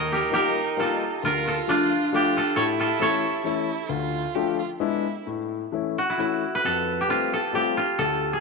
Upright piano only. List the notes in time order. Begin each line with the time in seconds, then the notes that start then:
Already playing: D#2
0.31 G3 A#3 D#4 F4
0.77 G3 A#3 D#4 F4
1.23 D2
1.68 F3 A3 D4 F4
2.12 F3 A3 D4 F4
2.57 A2
2.99 E3 A3 C#4 E4
3.44 E3 A3 C#4 E4
3.89 D2
4.35 F3 A3 D4 F4
4.80 G#3 B3 D4 E4
5.27 A2
5.72 E3 A3 C#4 E4
6.18 E3 A3 C#4 E4
6.64 F2
7.08 G3 A3 C4 F4
7.53 G3 A3 C4 F4
7.98 D2